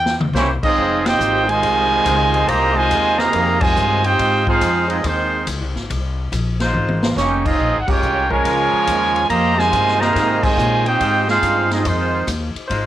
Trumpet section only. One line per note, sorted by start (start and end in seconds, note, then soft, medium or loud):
0.36 0.49 A#3 medium
0.36 0.49 E4 medium
0.36 0.49 G4 medium
0.36 0.49 C#5 medium
0.64 1.03 C4 medium
0.64 1.03 F4 loud
0.64 1.03 G#4 medium
0.64 1.03 D#5 loud
1.06 1.47 F4 loud
1.06 1.48 C5 loud
1.06 1.47 D#5 loud
1.06 1.49 G5 loud
1.49 2.48 F4 loud
1.49 2.46 C5 medium
1.49 2.46 D#5 medium
1.49 2.48 G#5 loud
2.47 2.76 G4 loud
2.47 2.75 C5 loud
2.47 2.75 D#5 loud
2.47 2.76 A#5 loud
2.76 3.19 F4 loud
2.76 3.19 C5 loud
2.76 3.17 D#5 loud
2.76 3.19 G#5 loud
3.18 3.61 G#4 medium
3.18 3.59 D#5 loud
3.18 3.61 F5 loud
3.18 3.61 A#5 loud
3.60 4.03 F4 medium
3.60 4.03 C5 loud
3.60 4.03 D#5 loud
3.60 4.04 G#5 loud
4.04 4.47 F4 loud
4.04 4.47 C5 loud
4.04 4.47 D#5 loud
4.04 4.47 G5 loud
4.48 4.87 D#4 loud
4.48 4.87 G#4 loud
4.48 4.87 C5 medium
4.48 4.87 F5 loud
4.90 5.03 C4 medium
4.90 5.03 F4 medium
4.90 5.03 G#4 medium
4.90 5.03 D#5 medium
5.05 5.47 G#3 medium
5.05 5.47 D#4 medium
5.05 5.47 F4 medium
5.05 5.47 C5 loud
7.17 7.43 A#3 medium
7.17 7.43 D#4 medium
7.17 7.43 G4 medium
7.17 7.44 C#5 loud
7.45 7.79 C4 medium
7.45 7.78 F4 medium
7.45 7.78 G#4 medium
7.45 7.78 D#5 loud
7.79 7.88 F#5 medium
7.89 8.30 F4 loud
7.89 8.29 A#4 medium
7.89 8.30 C#5 loud
7.89 8.31 G5 loud
8.31 9.26 F4 medium
8.31 9.26 A#4 loud
8.31 9.26 C#5 loud
8.31 9.26 G#5 loud
9.30 9.58 G4 loud
9.30 9.57 C5 loud
9.30 9.56 D#5 loud
9.30 9.58 A#5 loud
9.58 10.00 F4 loud
9.58 10.00 C5 loud
9.58 10.00 D#5 loud
9.58 10.00 G#5 loud
10.00 10.43 G#4 loud
10.00 10.42 D#5 loud
10.00 10.43 F5 medium
10.00 10.43 A#5 loud
10.43 10.85 F4 loud
10.43 10.85 C5 medium
10.43 10.85 D#5 loud
10.43 10.85 G#5 loud
10.86 11.28 F4 loud
10.86 11.28 C5 loud
10.86 11.28 D#5 medium
10.86 11.28 G5 loud
11.29 11.68 D#4 medium
11.29 11.68 G#4 medium
11.29 11.68 C5 medium
11.29 11.68 F5 loud
11.73 11.86 C4 medium
11.73 11.85 F4 medium
11.73 11.86 G#4 medium
11.73 11.86 D#5 medium
11.86 12.28 G#3 medium
11.86 12.28 D#4 medium
11.86 12.28 F4 medium
11.86 12.28 C5 loud